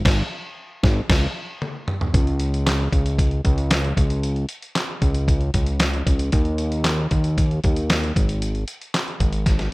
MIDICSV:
0, 0, Header, 1, 3, 480
1, 0, Start_track
1, 0, Tempo, 523104
1, 47, Time_signature, 4, 2, 24, 8
1, 8929, End_track
2, 0, Start_track
2, 0, Title_t, "Analog synth bass"
2, 0, Program_c, 0, 38
2, 44, Note_on_c, 0, 32, 116
2, 208, Note_off_c, 0, 32, 0
2, 763, Note_on_c, 0, 32, 107
2, 927, Note_off_c, 0, 32, 0
2, 1004, Note_on_c, 0, 37, 92
2, 1168, Note_off_c, 0, 37, 0
2, 1961, Note_on_c, 0, 37, 107
2, 2647, Note_off_c, 0, 37, 0
2, 2685, Note_on_c, 0, 37, 95
2, 3131, Note_off_c, 0, 37, 0
2, 3162, Note_on_c, 0, 37, 107
2, 3610, Note_off_c, 0, 37, 0
2, 3641, Note_on_c, 0, 37, 94
2, 4090, Note_off_c, 0, 37, 0
2, 4606, Note_on_c, 0, 37, 101
2, 5052, Note_off_c, 0, 37, 0
2, 5084, Note_on_c, 0, 37, 86
2, 5532, Note_off_c, 0, 37, 0
2, 5563, Note_on_c, 0, 37, 84
2, 5788, Note_off_c, 0, 37, 0
2, 5804, Note_on_c, 0, 39, 102
2, 6489, Note_off_c, 0, 39, 0
2, 6526, Note_on_c, 0, 39, 99
2, 6973, Note_off_c, 0, 39, 0
2, 7013, Note_on_c, 0, 39, 88
2, 7457, Note_off_c, 0, 39, 0
2, 7488, Note_on_c, 0, 32, 87
2, 7934, Note_off_c, 0, 32, 0
2, 8441, Note_on_c, 0, 32, 106
2, 8890, Note_off_c, 0, 32, 0
2, 8929, End_track
3, 0, Start_track
3, 0, Title_t, "Drums"
3, 46, Note_on_c, 9, 36, 106
3, 51, Note_on_c, 9, 38, 110
3, 51, Note_on_c, 9, 49, 93
3, 138, Note_off_c, 9, 36, 0
3, 142, Note_off_c, 9, 38, 0
3, 142, Note_off_c, 9, 49, 0
3, 766, Note_on_c, 9, 36, 99
3, 767, Note_on_c, 9, 38, 99
3, 858, Note_off_c, 9, 36, 0
3, 859, Note_off_c, 9, 38, 0
3, 1006, Note_on_c, 9, 36, 109
3, 1006, Note_on_c, 9, 38, 116
3, 1006, Note_on_c, 9, 49, 86
3, 1097, Note_off_c, 9, 38, 0
3, 1097, Note_off_c, 9, 49, 0
3, 1098, Note_off_c, 9, 36, 0
3, 1485, Note_on_c, 9, 48, 63
3, 1576, Note_off_c, 9, 48, 0
3, 1723, Note_on_c, 9, 45, 81
3, 1814, Note_off_c, 9, 45, 0
3, 1846, Note_on_c, 9, 43, 90
3, 1938, Note_off_c, 9, 43, 0
3, 1965, Note_on_c, 9, 36, 118
3, 1965, Note_on_c, 9, 42, 80
3, 2057, Note_off_c, 9, 36, 0
3, 2057, Note_off_c, 9, 42, 0
3, 2085, Note_on_c, 9, 42, 29
3, 2176, Note_off_c, 9, 42, 0
3, 2198, Note_on_c, 9, 42, 75
3, 2290, Note_off_c, 9, 42, 0
3, 2330, Note_on_c, 9, 42, 46
3, 2422, Note_off_c, 9, 42, 0
3, 2447, Note_on_c, 9, 38, 106
3, 2448, Note_on_c, 9, 42, 81
3, 2454, Note_on_c, 9, 39, 78
3, 2539, Note_off_c, 9, 38, 0
3, 2539, Note_off_c, 9, 42, 0
3, 2546, Note_off_c, 9, 39, 0
3, 2684, Note_on_c, 9, 36, 75
3, 2687, Note_on_c, 9, 42, 64
3, 2776, Note_off_c, 9, 36, 0
3, 2779, Note_off_c, 9, 42, 0
3, 2806, Note_on_c, 9, 42, 50
3, 2897, Note_off_c, 9, 42, 0
3, 2923, Note_on_c, 9, 36, 97
3, 2927, Note_on_c, 9, 42, 88
3, 3014, Note_off_c, 9, 36, 0
3, 3019, Note_off_c, 9, 42, 0
3, 3039, Note_on_c, 9, 42, 29
3, 3131, Note_off_c, 9, 42, 0
3, 3163, Note_on_c, 9, 42, 85
3, 3164, Note_on_c, 9, 36, 92
3, 3254, Note_off_c, 9, 42, 0
3, 3256, Note_off_c, 9, 36, 0
3, 3283, Note_on_c, 9, 42, 47
3, 3375, Note_off_c, 9, 42, 0
3, 3400, Note_on_c, 9, 42, 100
3, 3404, Note_on_c, 9, 38, 116
3, 3411, Note_on_c, 9, 39, 92
3, 3492, Note_off_c, 9, 42, 0
3, 3495, Note_off_c, 9, 38, 0
3, 3502, Note_off_c, 9, 39, 0
3, 3527, Note_on_c, 9, 42, 30
3, 3619, Note_off_c, 9, 42, 0
3, 3644, Note_on_c, 9, 36, 100
3, 3647, Note_on_c, 9, 42, 74
3, 3736, Note_off_c, 9, 36, 0
3, 3739, Note_off_c, 9, 42, 0
3, 3764, Note_on_c, 9, 42, 53
3, 3855, Note_off_c, 9, 42, 0
3, 3885, Note_on_c, 9, 42, 87
3, 3977, Note_off_c, 9, 42, 0
3, 4002, Note_on_c, 9, 42, 31
3, 4094, Note_off_c, 9, 42, 0
3, 4117, Note_on_c, 9, 42, 75
3, 4208, Note_off_c, 9, 42, 0
3, 4243, Note_on_c, 9, 42, 49
3, 4335, Note_off_c, 9, 42, 0
3, 4363, Note_on_c, 9, 38, 96
3, 4363, Note_on_c, 9, 42, 72
3, 4370, Note_on_c, 9, 39, 78
3, 4454, Note_off_c, 9, 38, 0
3, 4455, Note_off_c, 9, 42, 0
3, 4462, Note_off_c, 9, 39, 0
3, 4604, Note_on_c, 9, 36, 85
3, 4604, Note_on_c, 9, 42, 68
3, 4696, Note_off_c, 9, 36, 0
3, 4696, Note_off_c, 9, 42, 0
3, 4721, Note_on_c, 9, 42, 52
3, 4813, Note_off_c, 9, 42, 0
3, 4844, Note_on_c, 9, 36, 98
3, 4849, Note_on_c, 9, 42, 93
3, 4936, Note_off_c, 9, 36, 0
3, 4941, Note_off_c, 9, 42, 0
3, 4961, Note_on_c, 9, 42, 31
3, 5052, Note_off_c, 9, 42, 0
3, 5082, Note_on_c, 9, 42, 84
3, 5085, Note_on_c, 9, 36, 90
3, 5174, Note_off_c, 9, 42, 0
3, 5177, Note_off_c, 9, 36, 0
3, 5198, Note_on_c, 9, 42, 55
3, 5290, Note_off_c, 9, 42, 0
3, 5318, Note_on_c, 9, 42, 98
3, 5322, Note_on_c, 9, 38, 103
3, 5329, Note_on_c, 9, 39, 93
3, 5410, Note_off_c, 9, 42, 0
3, 5413, Note_off_c, 9, 38, 0
3, 5421, Note_off_c, 9, 39, 0
3, 5446, Note_on_c, 9, 42, 35
3, 5537, Note_off_c, 9, 42, 0
3, 5567, Note_on_c, 9, 36, 83
3, 5568, Note_on_c, 9, 42, 75
3, 5658, Note_off_c, 9, 36, 0
3, 5660, Note_off_c, 9, 42, 0
3, 5683, Note_on_c, 9, 42, 56
3, 5775, Note_off_c, 9, 42, 0
3, 5802, Note_on_c, 9, 42, 87
3, 5808, Note_on_c, 9, 36, 115
3, 5894, Note_off_c, 9, 42, 0
3, 5900, Note_off_c, 9, 36, 0
3, 5919, Note_on_c, 9, 42, 33
3, 6011, Note_off_c, 9, 42, 0
3, 6040, Note_on_c, 9, 42, 87
3, 6132, Note_off_c, 9, 42, 0
3, 6164, Note_on_c, 9, 42, 53
3, 6256, Note_off_c, 9, 42, 0
3, 6280, Note_on_c, 9, 38, 103
3, 6280, Note_on_c, 9, 42, 83
3, 6287, Note_on_c, 9, 39, 83
3, 6371, Note_off_c, 9, 38, 0
3, 6372, Note_off_c, 9, 42, 0
3, 6378, Note_off_c, 9, 39, 0
3, 6523, Note_on_c, 9, 42, 64
3, 6527, Note_on_c, 9, 36, 72
3, 6615, Note_off_c, 9, 42, 0
3, 6619, Note_off_c, 9, 36, 0
3, 6643, Note_on_c, 9, 42, 46
3, 6735, Note_off_c, 9, 42, 0
3, 6769, Note_on_c, 9, 36, 90
3, 6771, Note_on_c, 9, 42, 88
3, 6861, Note_off_c, 9, 36, 0
3, 6863, Note_off_c, 9, 42, 0
3, 6892, Note_on_c, 9, 42, 31
3, 6984, Note_off_c, 9, 42, 0
3, 7007, Note_on_c, 9, 42, 86
3, 7011, Note_on_c, 9, 36, 97
3, 7099, Note_off_c, 9, 42, 0
3, 7103, Note_off_c, 9, 36, 0
3, 7124, Note_on_c, 9, 42, 52
3, 7216, Note_off_c, 9, 42, 0
3, 7246, Note_on_c, 9, 42, 95
3, 7249, Note_on_c, 9, 38, 116
3, 7256, Note_on_c, 9, 39, 89
3, 7338, Note_off_c, 9, 42, 0
3, 7341, Note_off_c, 9, 38, 0
3, 7348, Note_off_c, 9, 39, 0
3, 7373, Note_on_c, 9, 42, 34
3, 7465, Note_off_c, 9, 42, 0
3, 7490, Note_on_c, 9, 36, 94
3, 7493, Note_on_c, 9, 42, 74
3, 7582, Note_off_c, 9, 36, 0
3, 7585, Note_off_c, 9, 42, 0
3, 7607, Note_on_c, 9, 42, 49
3, 7699, Note_off_c, 9, 42, 0
3, 7726, Note_on_c, 9, 42, 82
3, 7818, Note_off_c, 9, 42, 0
3, 7844, Note_on_c, 9, 42, 30
3, 7936, Note_off_c, 9, 42, 0
3, 7961, Note_on_c, 9, 42, 76
3, 8053, Note_off_c, 9, 42, 0
3, 8089, Note_on_c, 9, 42, 48
3, 8180, Note_off_c, 9, 42, 0
3, 8206, Note_on_c, 9, 38, 96
3, 8206, Note_on_c, 9, 42, 85
3, 8213, Note_on_c, 9, 39, 81
3, 8298, Note_off_c, 9, 38, 0
3, 8298, Note_off_c, 9, 42, 0
3, 8305, Note_off_c, 9, 39, 0
3, 8329, Note_on_c, 9, 42, 26
3, 8421, Note_off_c, 9, 42, 0
3, 8445, Note_on_c, 9, 42, 62
3, 8446, Note_on_c, 9, 36, 76
3, 8536, Note_off_c, 9, 42, 0
3, 8538, Note_off_c, 9, 36, 0
3, 8557, Note_on_c, 9, 42, 49
3, 8649, Note_off_c, 9, 42, 0
3, 8681, Note_on_c, 9, 38, 53
3, 8684, Note_on_c, 9, 42, 89
3, 8685, Note_on_c, 9, 36, 95
3, 8773, Note_off_c, 9, 38, 0
3, 8776, Note_off_c, 9, 36, 0
3, 8776, Note_off_c, 9, 42, 0
3, 8799, Note_on_c, 9, 42, 33
3, 8802, Note_on_c, 9, 38, 50
3, 8891, Note_off_c, 9, 42, 0
3, 8893, Note_off_c, 9, 38, 0
3, 8929, End_track
0, 0, End_of_file